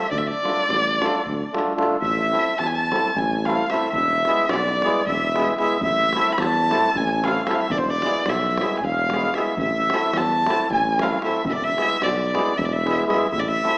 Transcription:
Already playing: E5
0.11 D2 D5, davul low
0.18 E5
0.27 D5, davul high
0.43 A3 D4 F4 A4, davul high
0.57 davul high
0.68 A1, davul high
1.01 A3 D4 F4 A4, davul high
1.25 D2, davul low
1.52 A3 D4 F4 A4, davul high
1.67 davul high
1.75 A3 D4 F4 A4, davul high
2.01 A1 E5, davul low
2.31 A3 C4 E4 A4, davul high
2.47 davul high
2.58 E2 A5, davul high
2.66 G#5
2.75 A5
2.91 A3 C4 E4 A4, davul high
3.16 A1 G#5, davul low
3.45 A3 C4 E4 A4 F5, davul high
3.70 A3 C4 E4 A4 E5, davul high
3.92 E1 E5, davul low
4.25 G#3 B3 E4 G#4, davul high
4.37 davul high
4.49 B1 D5, davul high
4.82 G#3 B3 E4 G#4, davul high
5.06 E1 E5, davul low
5.34 G#3 B3 E4 G#4, davul high
5.58 G#3 B3 E4 G#4 E5, davul high
5.81 A1 E5, davul low
6.13 A3 C4 E4 A4, davul high
6.27 davul high
6.32 B5
6.38 E2 A5, davul high
6.69 A3 C4 E4 A4, davul high
6.95 A1 G#5, davul low
7.21 A3 C4 E4 A4, davul high
7.25 F5
7.45 A3 C4 E4 A4 E5, davul high
7.53 F5
7.60 E5
7.69 E1 D5, davul low
7.77 C5
7.87 D5, davul high
8.02 G#3 B3 E4 G#4, davul high
8.14 davul high
8.26 B1 E5, davul high
8.42 davul high
8.57 G#3 B3 E4 G#4, davul high
8.76 G#5
8.81 E1 F5, davul low
8.86 F5
8.98 davul high
9.10 G#3 B3, davul high
9.14 E4 G#4
9.34 G#3 B3 E4 G#4 E5, davul high
9.38 E5
9.57 A1 E5, davul low
9.90 A3 C4 E4, davul high
9.94 A4
10.01 davul high
10.13 E2 A5, davul high
10.46 A3 C4 E4 A4, davul high
10.70 A1 G#5, davul low
10.99 A3 C4 E4 A4 F5, davul high
11.22 A3 C4 E4 A4 E5, davul high
11.45 E1 E5, davul low
11.52 D5
11.64 E5
11.76 G#3 B3 E4 G#4, davul high
11.90 davul high
12.01 B1 D5, davul high
12.32 G#3 B3 E4 G#4, davul high
12.57 E1 E5, davul low
12.65 D5
12.72 E5
12.84 G#3 B3 E4 G#4, davul high
13.05 G#3 B3 E4 G#4
13.09 E5, davul high
13.31 A1 E5, davul low
13.39 D5
13.49 E5
13.63 A3 C4 E4 A4, davul high

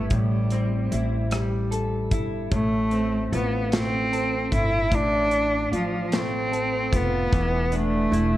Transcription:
Already playing: A2 G3 A3 C4 E4 A4
0.10 A1 A2 G3, kick, closed hi-hat
0.50 C4, cross-stick, closed hi-hat
0.92 A1 E4, closed hi-hat
1.31 G3, cross-stick, closed hi-hat
1.71 A4, closed hi-hat
2.11 G1 E4, kick, closed hi-hat
2.51 A1 A2 A3, kick, closed hi-hat
2.91 C4, closed hi-hat
3.32 A1 B3 F4, closed hi-hat
3.72 A3 C4, snare, closed hi-hat
4.12 A4, closed hi-hat
4.52 G1 E4, kick, closed hi-hat
4.92 A1 A2 D4, kick, closed hi-hat
5.32 closed hi-hat
5.72 A1 F3 F4, closed hi-hat
6.12 A3 C4, snare, closed hi-hat
6.52 A4, closed hi-hat
6.92 F1 B3 F4, kick, closed hi-hat
7.33 E1 E3, kick, closed hi-hat
7.72 A3 D4, closed hi-hat
8.12 E1 E4, closed hi-hat

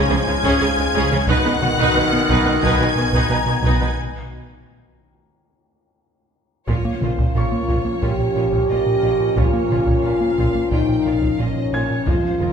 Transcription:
Already playing: G#2 F3 G#3 C#4 G#4 C5 G#5 C6 G#6
0.09 C#2 C#3 C#4 G#4
0.26 C#2 C#3 G#3 F4
0.43 C#2 C#3 C#4 G#4, taiko
0.60 C#2 C#3 C#4 G#4
0.77 C#2 C#3 G#3 F4
0.93 C#2 C#3 C#4 G#4
1.11 C#2 C#3 C#4 G#4
1.28 B1 F#2 B2 D#3 B3 D#4 F#4 B4 F#5 F#6, taiko
1.44 B2 B3 D#4 B4
1.61 B1 B2 B3 F#4, taiko mid
1.78 B2 D#4 B4, taiko
1.94 B1 B2 D#4 B4
2.12 B2 B3 F#4
2.28 B1 B2 D#4 B4, taiko
2.46 B2 B3 D#4 B4
2.62 B1 B2 D#4 B4 G#5 G#6, taiko
2.79 B2 D#4 B4
2.96 B1 B2 B3 F#4
3.13 B2 D#4 B4, taiko
3.29 B1 B2 D#4 B4 A#5
3.46 B2 B3 F#4
3.63 B1 B2 D#4 B4
3.80 B2 D#4 B4
6.67 A#1 A#2 F3 A#3 C#4 F4 A#4 C#5, taiko
6.85 A#3
7.01 A#1 A#2 A#3 F4 C5 C#5, taiko mid
7.18 A#2, taiko
7.35 A#1 A#2 A#3 F4 C#5 C#6
7.52 A#3
7.68 A#1 A#2 A#3 F4 C#5, taiko
7.85 A#3
8.02 A#1 A#2 A#3 F4 G4 C#5, taiko
8.19 A#2
8.36 A#1 A#2 A#3 F4 C#5
8.53 A#2, taiko
8.69 A#1 A#2 A#3 F4 C#5 D#5
8.86 A#2
9.03 A#1 A#2 A#3 F4 C#5
9.20 A#2
9.36 A#1 A#2 A#3 F4 C#5, taiko
9.53 A#3
9.70 A#1 A#2 A#3 F4 C#5, taiko mid
9.86 A#2, taiko
10.03 A#1 A#2 A#3 F4 C#5 F5
10.21 A#3
10.38 A#1 A#2 A#3 F4 C#5, taiko
10.55 A#3
10.71 A#1 A#2 A#3 D#4 F4 C#5 G5, taiko
10.88 A#2
11.05 A#1 A#2 A#3 F4 C#5 F5
11.22 A#2, taiko
11.39 A#1 A#2 A#3 C#4 F4 C#5 D#5
11.57 A#2
11.73 A#1 A#2 A#3 F4 C#5 G#5 G#6
11.90 A#2
12.06 F1 F2 G#2 C3 F3 G#3 F4 C5, taiko
12.23 F3
12.40 F1 F2 G#3 F4 A#4 C5, taiko mid

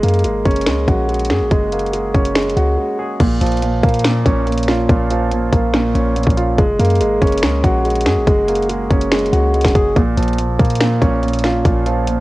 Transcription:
Already playing: G#3
0.03 F#2 A#3, closed hi-hat
0.09 closed hi-hat
0.14 closed hi-hat
0.19 closed hi-hat
0.24 G#1 G#3, closed hi-hat
0.45 F#1 C#4, kick, closed hi-hat, open hi-hat
0.51 closed hi-hat
0.56 closed hi-hat
0.61 closed hi-hat
0.66 C#2 G#3, finger snap, snare, closed hi-hat
0.88 A#1 F#4, kick, closed hi-hat
1.09 G#3, closed hi-hat
1.14 closed hi-hat
1.19 closed hi-hat
1.25 closed hi-hat
1.30 F#2 G#4, finger snap, snare
1.41 A#1
1.51 F#1 G#3, kick, closed hi-hat
1.72 A#3, closed hi-hat
1.79 closed hi-hat
1.86 closed hi-hat
1.93 G#3, closed hi-hat
2.14 F#1 C#4, kick, closed hi-hat, open hi-hat
2.25 closed hi-hat
2.35 G#3, finger snap, snare, closed hi-hat
2.43 closed hi-hat
2.50 closed hi-hat
2.57 C#2 F#4, closed hi-hat
2.78 G#3
2.99 G#4
3.20 A#1 A#2, kick, closed hi-hat, crash
3.41 A#1 F3, closed hi-hat
3.47 closed hi-hat
3.52 closed hi-hat
3.57 closed hi-hat
3.62 A#2, closed hi-hat
3.83 A#2 A#3, kick, closed hi-hat, open hi-hat
3.89 closed hi-hat
3.94 closed hi-hat
3.99 closed hi-hat
4.05 A#2, finger snap, snare, closed hi-hat
4.26 A#1 C#4, kick, closed hi-hat
4.47 A#2, closed hi-hat
4.52 closed hi-hat
4.58 closed hi-hat
4.63 closed hi-hat
4.68 F4, finger snap, snare
4.89 A#1 A#2, kick, closed hi-hat
5.10 F3, closed hi-hat
5.31 A#2, closed hi-hat
5.53 A#1 A#3, kick, closed hi-hat
5.74 A#2, finger snap, snare, closed hi-hat
5.95 A#1 C#4, closed hi-hat
6.16 A#2, closed hi-hat
6.23 A#1, kick, closed hi-hat
6.30 closed hi-hat
6.37 F4, closed hi-hat
6.58 F#1 G#3, kick, closed hi-hat
6.79 F#2 A#3, closed hi-hat
6.85 closed hi-hat
6.90 closed hi-hat
6.95 closed hi-hat
7.00 G#1 G#3, closed hi-hat
7.22 F#1 C#4, kick, closed hi-hat, open hi-hat
7.27 closed hi-hat
7.32 closed hi-hat
7.38 closed hi-hat
7.43 C#2 G#3, finger snap, snare
7.64 A#1 F#4, kick, closed hi-hat
7.85 G#3, closed hi-hat
7.90 closed hi-hat
7.96 closed hi-hat
8.01 closed hi-hat
8.06 F#2 G#4, finger snap, snare
8.17 A#1
8.27 F#1 G#3, kick, closed hi-hat
8.48 A#3, closed hi-hat
8.55 closed hi-hat
8.62 closed hi-hat
8.69 G#3, closed hi-hat
8.91 F#1 C#4, kick, closed hi-hat, open hi-hat
9.01 closed hi-hat
9.12 G#3, finger snap, snare, closed hi-hat
9.19 closed hi-hat
9.26 closed hi-hat
9.33 C#2 F#4, closed hi-hat
9.54 G#3, closed hi-hat
9.61 F#1, finger snap, kick, snare, closed hi-hat
9.68 closed hi-hat
9.75 F#1 G#4, kick, closed hi-hat
9.96 A#1 A#2, kick, closed hi-hat
10.17 A#1 F3, closed hi-hat
10.23 closed hi-hat
10.28 closed hi-hat
10.33 closed hi-hat
10.38 A#2, closed hi-hat
10.59 A#2 A#3, kick, closed hi-hat, open hi-hat
10.65 closed hi-hat
10.70 closed hi-hat
10.75 closed hi-hat
10.81 A#2, finger snap, snare, closed hi-hat
11.02 A#1 C#4, kick, closed hi-hat
11.23 A#2, closed hi-hat
11.28 closed hi-hat
11.34 closed hi-hat
11.39 closed hi-hat
11.44 F4, finger snap, snare
11.65 A#1 A#2, kick, closed hi-hat
11.86 F3, closed hi-hat
12.07 A#2, closed hi-hat

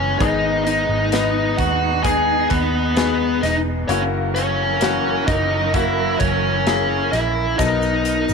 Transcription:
Already playing: F#1 C#3 E3 G#3 B3 C#4 E4 B4 C#5
0.19 G#1 G#2 D#3 B3 D#4 G#4 D#5, kick, closed hi-hat
0.65 D#4 D#5, closed hi-hat
0.89 G#1
1.12 B3 D#4 B4, snare, closed hi-hat
1.57 D#2 F#4 F#5, kick, closed hi-hat
2.03 B3 D#4 G#4 G#5, kick, closed hi-hat
2.50 D#2 B3 B4, kick, closed hi-hat
2.97 B3 D#4 G#4, snare, closed hi-hat
3.43 E1 D#4 D#5, snare, closed hi-hat
3.88 F#1 C#3 E3 F#3 A#3 C#4 E4 F#4 A#4 C#5, closed hi-hat
4.35 C#4 C#5, closed hi-hat
4.81 E3 A#3 F#4, snare, closed hi-hat
5.27 F#1 D#4 D#5, kick, closed hi-hat
5.74 A#3 E4 F#4 E5, kick, closed hi-hat
6.19 F#1 C#4 C#5, kick, closed hi-hat
6.67 A#3 E4 G#4, snare, closed hi-hat
7.12 A#1 E4 E5, snare, closed hi-hat
7.58 B1 B2 F#3 B3 D#4 A4 A#4 D#5, kick, closed hi-hat, shaker
7.66 A#4
7.82 shaker
8.05 closed hi-hat, shaker
8.29 G#1, shaker

